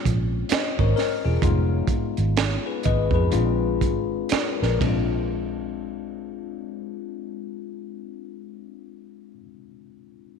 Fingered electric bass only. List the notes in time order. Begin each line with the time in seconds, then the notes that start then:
0.06 A#1
0.52 muted fingered electric bass stroke
0.79 G#1
1.25 E1
1.43 F1
2.18 G#1
2.86 G#1
3.11 F2
3.33 A#1
3.82 G#1
4.32 muted fingered electric bass stroke
4.62 A#1
4.81 A#1